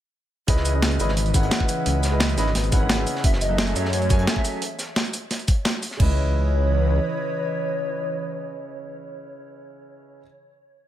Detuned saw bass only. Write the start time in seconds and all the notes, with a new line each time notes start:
0.48 C#2
1.00 G#1
1.86 C#2
2.38 G#1
2.55 G#1
3.24 F#1
3.76 F#2
6.00 C#2